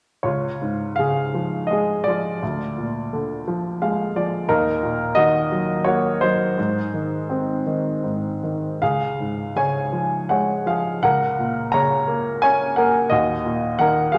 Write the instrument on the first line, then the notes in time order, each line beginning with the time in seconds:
grand piano
0.23 C#2 F4 C#5
0.62 G#2
0.96 C#3 G#4 F5
1.34 F3
1.67 G#3 D#5
1.73 G#4
2.04 F3 D5
2.09 F4
2.42 D2
2.77 A#2
3.13 D3
3.48 F3
3.82 G#3 F5
4.16 F3 D5
4.48 D#2 D#4 A#4
4.83 A#2
5.15 D#3 F#4 D#5
5.52 F#3
5.84 A#3 F#4 C#5
6.21 F#3 D#4 C5
6.58 G#2
6.94 D#3
7.29 C4
7.66 D#3
8.04 G#2
8.43 D#3
8.82 C#2 G#4 F5
9.20 G#2
9.56 C#3 C#5 G#5
9.92 F3
10.29 G#3 C#5 F#5
10.66 F3 G#4 F5
11.03 C#2 A#4 F#5
11.39 A#2
11.72 C#3 C#5 A#5
12.08 A#3
12.42 C#4 C#5 G#5
12.76 A#3 A#4 F#5
13.10 D#2 F#4 D#5
13.45 A#2
13.79 D#3 A#4 F#5
14.12 F#3 G#4 F5